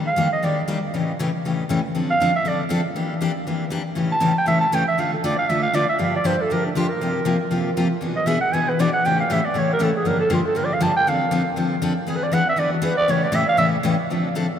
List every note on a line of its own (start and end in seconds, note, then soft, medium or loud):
0.06 0.29 F5 medium
0.16 0.26 D#3 medium
0.16 0.26 G3 medium
0.16 0.27 A#3 loud
0.16 0.27 D4 loud
0.16 0.27 G4 loud
0.33 0.46 D#5 medium
0.42 0.60 D#3 medium
0.42 0.60 G3 medium
0.42 0.61 A#3 medium
0.42 0.60 D4 medium
0.42 0.61 G4 medium
0.42 0.57 D5 medium
0.68 0.77 D#3 medium
0.68 0.77 G3 medium
0.68 0.78 A#3 medium
0.68 0.78 D4 medium
0.68 0.78 G4 loud
0.94 1.11 A2 medium
0.94 1.11 C#3 medium
0.94 1.11 E3 medium
0.94 1.11 A3 medium
0.94 1.12 C#4 medium
0.94 1.12 G4 medium
1.19 1.29 A2 medium
1.19 1.29 C#3 medium
1.19 1.29 E3 medium
1.19 1.29 A3 loud
1.19 1.29 C#4 loud
1.19 1.29 G4 medium
1.45 1.62 A2 medium
1.45 1.62 C#3 medium
1.45 1.62 E3 medium
1.45 1.62 A3 medium
1.45 1.62 C#4 medium
1.45 1.63 G4 medium
1.69 1.79 A2 medium
1.69 1.79 C#3 medium
1.69 1.79 E3 medium
1.69 1.79 A3 medium
1.69 1.79 C#4 loud
1.69 1.79 G4 loud
1.95 2.12 D3 medium
1.95 2.12 F3 medium
1.95 2.12 C4 medium
1.95 2.13 D4 medium
1.95 2.13 A4 medium
2.10 2.33 F5 loud
2.20 2.30 D3 medium
2.20 2.30 F3 medium
2.20 2.30 C4 loud
2.20 2.30 D4 medium
2.20 2.30 A4 loud
2.36 2.50 E5 medium
2.45 2.62 D3 medium
2.45 2.63 F3 medium
2.45 2.63 C4 medium
2.45 2.63 D4 medium
2.45 2.63 A4 medium
2.45 2.60 D5 medium
2.69 2.79 D3 medium
2.69 2.80 F3 medium
2.69 2.80 C4 loud
2.69 2.80 D4 medium
2.69 2.80 A4 loud
2.96 3.13 E3 medium
2.96 3.13 A#3 medium
2.96 3.13 D4 medium
2.96 3.14 G4 medium
3.21 3.31 E3 medium
3.21 3.31 A#3 medium
3.21 3.31 D4 medium
3.21 3.31 G4 loud
3.47 3.64 E3 medium
3.47 3.64 A#3 medium
3.47 3.64 D4 medium
3.47 3.64 G4 medium
3.70 3.81 E3 medium
3.70 3.81 A#3 medium
3.70 3.81 D4 medium
3.70 3.81 G4 medium
3.95 4.14 A2 medium
3.95 4.14 C#3 medium
3.95 4.14 E3 medium
3.95 4.14 A3 medium
3.95 4.14 C#4 medium
3.95 4.15 G4 medium
4.12 4.35 A5 loud
4.20 4.31 A2 loud
4.20 4.31 C#3 medium
4.20 4.31 E3 medium
4.20 4.31 A3 loud
4.20 4.32 C#4 medium
4.20 4.32 G4 medium
4.38 4.47 G5 medium
4.46 4.65 A2 medium
4.46 4.64 C#3 medium
4.46 4.65 E3 medium
4.46 4.65 A3 medium
4.46 4.65 C#4 medium
4.46 4.65 G4 medium
4.46 4.56 E5 medium
4.61 4.76 A5 loud
4.72 4.82 A2 medium
4.72 4.82 C#3 medium
4.72 4.83 E3 medium
4.72 4.83 A3 medium
4.72 4.83 C#4 loud
4.72 4.83 G4 medium
4.72 4.87 G5 medium
4.88 5.01 E5 loud
4.98 5.16 D3 medium
4.98 5.16 A3 medium
4.98 5.16 D4 medium
4.98 5.16 F4 medium
4.98 5.16 A4 medium
4.98 5.13 F5 medium
5.14 5.26 A4 medium
5.24 5.33 D3 medium
5.24 5.33 A3 medium
5.24 5.34 D4 medium
5.24 5.34 F4 loud
5.24 5.34 A4 loud
5.24 5.38 D5 medium
5.38 5.50 F5 loud
5.49 5.67 D3 medium
5.49 5.67 A3 medium
5.49 5.67 D4 medium
5.49 5.67 F4 medium
5.49 5.67 A4 medium
5.49 5.62 E5 medium
5.62 5.76 F5 loud
5.74 5.84 D3 medium
5.74 5.84 A3 loud
5.74 5.84 D4 medium
5.74 5.84 F4 loud
5.74 5.84 A4 loud
5.74 5.88 D5 loud
5.89 6.00 E5 medium
5.99 6.17 G2 medium
5.99 6.17 D3 medium
5.99 6.17 F3 medium
5.99 6.17 A#3 medium
5.99 6.17 D4 medium
5.99 6.17 G4 medium
5.99 6.13 F5 medium
6.16 6.27 D5 medium
6.24 6.34 G2 medium
6.24 6.34 D3 medium
6.24 6.35 F3 medium
6.24 6.35 A#3 medium
6.24 6.35 D4 medium
6.24 6.35 G4 loud
6.24 6.43 C5 medium
6.41 6.54 A4 medium
6.50 6.68 G2 medium
6.50 6.68 D3 medium
6.50 6.68 F3 medium
6.50 6.68 A#3 medium
6.50 6.68 D4 medium
6.50 6.69 G4 medium
6.50 6.65 A#4 medium
6.66 6.77 D4 soft
6.75 6.85 G2 medium
6.75 6.85 D3 medium
6.75 6.86 F3 medium
6.75 6.86 A#3 loud
6.75 6.86 D4 medium
6.75 6.90 F4 medium
6.75 6.86 G4 loud
6.89 7.51 A#4 medium
7.01 7.19 C3 medium
7.01 7.19 F3 medium
7.01 7.19 A#3 medium
7.01 7.19 F4 medium
7.01 7.20 G4 medium
7.25 7.35 C3 loud
7.25 7.36 F3 medium
7.25 7.36 A#3 medium
7.25 7.36 F4 medium
7.25 7.36 G4 medium
7.51 7.69 C3 medium
7.51 7.69 F3 medium
7.51 7.69 A#3 medium
7.51 7.69 F4 medium
7.51 7.70 G4 medium
7.77 7.87 C3 medium
7.77 7.87 F3 medium
7.77 7.87 A#3 medium
7.77 7.87 F4 loud
7.77 7.87 G4 loud
8.01 8.19 B2 medium
8.01 8.19 E3 medium
8.01 8.20 B3 medium
8.01 8.20 D4 medium
8.01 8.20 G#4 medium
8.16 8.28 D#5 medium
8.26 8.37 B2 medium
8.26 8.37 E3 medium
8.26 8.37 B3 loud
8.26 8.37 D4 medium
8.26 8.37 G#4 medium
8.26 8.40 E5 medium
8.41 8.55 F#5 loud
8.53 8.71 B2 medium
8.53 8.71 E3 medium
8.53 8.71 B3 medium
8.53 8.71 D4 medium
8.53 8.71 G#4 medium
8.53 8.71 G#5 loud
8.69 8.82 B4 medium
8.79 8.89 B2 medium
8.79 8.89 E3 medium
8.79 8.89 B3 medium
8.79 8.89 D4 loud
8.79 8.89 G#4 loud
8.79 8.93 D5 medium
8.93 9.07 F#5 loud
9.05 9.22 A2 medium
9.05 9.22 C#3 medium
9.05 9.22 E3 medium
9.05 9.22 A3 medium
9.05 9.22 C#4 medium
9.05 9.22 G4 medium
9.05 9.19 G5 loud
9.20 9.34 F5 medium
9.30 9.39 A2 medium
9.30 9.39 C#3 medium
9.30 9.39 E3 medium
9.30 9.40 A3 medium
9.30 9.40 C#4 loud
9.30 9.40 G4 loud
9.30 9.46 E5 medium
9.45 9.61 D5 medium
9.54 9.72 A2 medium
9.54 9.72 C#3 medium
9.54 9.72 E3 medium
9.54 9.72 A3 medium
9.54 9.72 C#4 medium
9.54 9.73 G4 medium
9.59 9.71 C#5 medium
9.73 9.85 A#4 medium
9.79 9.89 A2 medium
9.79 9.89 C#3 medium
9.79 9.90 E3 medium
9.79 9.89 A3 medium
9.79 9.90 C#4 loud
9.79 9.90 G4 medium
9.83 9.95 A4 medium
9.96 10.09 G#4 medium
10.05 10.23 G2 medium
10.05 10.23 D3 medium
10.05 10.23 F3 medium
10.05 10.23 A#3 medium
10.05 10.23 D4 medium
10.05 10.23 G4 medium
10.05 10.20 A#4 medium
10.20 10.35 A4 medium
10.30 10.40 G2 medium
10.30 10.40 D3 loud
10.30 10.40 F3 medium
10.30 10.40 A#3 medium
10.30 10.40 D4 loud
10.30 10.40 G4 loud
10.34 10.46 F4 medium
10.46 10.59 A4 medium
10.55 10.73 G2 medium
10.55 10.73 D3 medium
10.55 10.73 F3 medium
10.55 10.74 A#3 medium
10.55 10.74 D4 medium
10.55 10.74 G4 medium
10.55 10.66 A#4 medium
10.65 10.75 D5 medium
10.73 10.84 F5 medium
10.80 10.90 G2 medium
10.80 10.91 D3 medium
10.80 10.90 F3 loud
10.80 10.91 A#3 medium
10.80 10.91 D4 loud
10.80 10.91 G4 medium
10.80 10.96 A5 loud
10.96 11.10 G5 medium
11.07 11.24 D3 medium
11.07 11.25 F3 medium
11.07 11.25 C4 medium
11.07 11.25 D4 medium
11.07 11.25 A4 medium
11.07 11.58 F5 medium
11.31 11.41 D3 medium
11.31 11.41 F3 loud
11.31 11.41 C4 loud
11.31 11.42 D4 loud
11.31 11.42 A4 medium
11.56 11.74 D3 medium
11.56 11.74 F3 medium
11.56 11.75 C4 medium
11.56 11.75 D4 medium
11.56 11.75 A4 medium
11.82 11.92 D3 medium
11.82 11.92 F3 loud
11.82 11.92 C4 loud
11.82 11.92 D4 medium
11.82 11.92 A4 loud
12.07 12.25 E3 medium
12.07 12.25 B3 medium
12.07 12.25 D4 medium
12.07 12.25 G#4 medium
12.07 12.17 G#4 medium
12.16 12.25 B4 medium
12.23 12.35 D5 medium
12.32 12.42 E3 loud
12.32 12.42 B3 loud
12.32 12.43 D4 medium
12.32 12.43 G#4 loud
12.32 12.47 F#5 loud
12.49 12.61 E5 loud
12.56 12.75 E3 medium
12.56 12.75 B3 medium
12.56 12.76 D4 medium
12.56 12.75 G#4 medium
12.56 12.72 D5 medium
12.72 12.86 F#4 medium
12.82 12.92 E3 loud
12.82 12.92 B3 loud
12.82 12.92 D4 medium
12.82 12.93 G#4 loud
12.82 12.97 B4 medium
12.97 13.12 D5 loud
13.08 13.26 A2 medium
13.08 13.26 C#3 medium
13.08 13.26 E3 medium
13.08 13.26 A3 medium
13.08 13.27 C#4 medium
13.08 13.27 G4 medium
13.08 13.25 C#5 medium
13.24 13.37 D5 loud
13.32 13.43 A2 medium
13.32 13.43 C#3 loud
13.32 13.43 E3 medium
13.32 13.43 A3 loud
13.32 13.43 C#4 loud
13.32 13.43 G4 loud
13.32 13.48 E5 medium
13.48 13.58 F5 loud
13.57 13.76 A2 medium
13.57 13.76 C#3 medium
13.57 13.76 E3 medium
13.57 13.76 A3 medium
13.57 13.76 C#4 medium
13.57 13.77 G4 medium
13.57 13.67 E5 medium
13.83 13.94 A2 medium
13.83 13.94 C#3 medium
13.83 13.94 E3 loud
13.83 13.94 A3 medium
13.83 13.94 C#4 loud
13.83 13.94 G4 loud
14.10 14.28 D3 medium
14.10 14.28 F3 medium
14.10 14.28 C4 medium
14.10 14.28 D4 medium
14.10 14.29 A4 medium
14.35 14.45 D3 medium
14.35 14.45 F3 medium
14.35 14.45 C4 medium
14.35 14.45 D4 loud
14.35 14.46 A4 loud